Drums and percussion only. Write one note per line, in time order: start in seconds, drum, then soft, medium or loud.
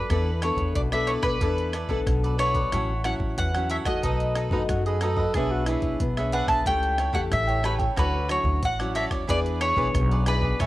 0.10 kick medium
0.10 cross-stick medium
0.10 closed hi-hat medium
0.42 cross-stick medium
0.42 closed hi-hat soft
0.58 kick medium
0.58 closed hi-hat soft
0.75 kick medium
0.75 closed hi-hat medium
0.92 cross-stick medium
0.92 closed hi-hat soft
1.08 closed hi-hat soft
1.23 kick medium
1.23 cross-stick medium
1.23 closed hi-hat soft
1.41 kick medium
1.41 closed hi-hat medium
1.58 closed hi-hat soft
1.73 cross-stick medium
1.73 closed hi-hat soft
1.89 kick medium
2.07 kick medium
2.07 cross-stick medium
2.07 closed hi-hat medium
2.24 closed hi-hat soft
2.39 cross-stick medium
2.39 closed hi-hat soft
2.55 kick medium
2.55 closed hi-hat soft
2.72 kick medium
2.72 cross-stick medium
2.72 closed hi-hat medium
3.04 cross-stick medium
3.04 closed hi-hat medium
3.20 kick medium
3.38 kick medium
3.38 closed hi-hat medium
3.55 cross-stick medium
3.55 closed hi-hat soft
3.70 closed hi-hat soft
3.86 kick medium
3.86 cross-stick medium
3.86 closed hi-hat soft
4.03 kick medium
4.03 closed hi-hat medium
4.20 closed hi-hat soft
4.36 cross-stick medium
4.36 closed hi-hat soft
4.51 kick medium
4.69 kick medium
4.69 cross-stick medium
4.69 closed hi-hat medium
4.86 closed hi-hat soft
5.01 cross-stick medium
5.01 closed hi-hat soft
5.17 kick medium
5.34 kick medium
5.34 cross-stick medium
5.34 closed hi-hat medium
5.66 cross-stick medium
5.66 closed hi-hat soft
5.82 kick medium
5.82 closed hi-hat soft
6.00 kick medium
6.00 closed hi-hat medium
6.17 cross-stick medium
6.17 closed hi-hat soft
6.32 closed hi-hat soft
6.48 kick medium
6.48 cross-stick medium
6.48 closed hi-hat soft
6.66 kick medium
6.66 closed hi-hat medium
6.83 closed hi-hat soft
6.98 cross-stick medium
6.98 closed hi-hat soft
7.14 kick medium
7.32 kick medium
7.32 cross-stick medium
7.32 closed hi-hat medium
7.49 closed hi-hat soft
7.64 cross-stick medium
7.64 closed hi-hat soft
7.79 kick medium
7.79 closed hi-hat soft
7.97 kick medium
7.97 cross-stick medium
7.97 closed hi-hat medium
8.29 cross-stick medium
8.29 closed hi-hat medium
8.45 kick medium
8.63 kick medium
8.63 closed hi-hat medium
8.80 cross-stick medium
8.80 closed hi-hat soft
8.95 closed hi-hat soft
9.11 kick medium
9.11 cross-stick medium
9.11 closed hi-hat soft
9.29 kick medium
9.29 closed hi-hat medium
9.46 closed hi-hat soft
9.61 cross-stick medium
9.61 closed hi-hat medium
9.77 kick medium
9.94 kick medium
9.94 cross-stick medium
9.94 closed hi-hat medium
10.12 closed hi-hat soft
10.26 cross-stick medium
10.26 closed hi-hat medium
10.42 kick medium
10.60 kick medium
10.60 cross-stick medium
10.60 closed hi-hat medium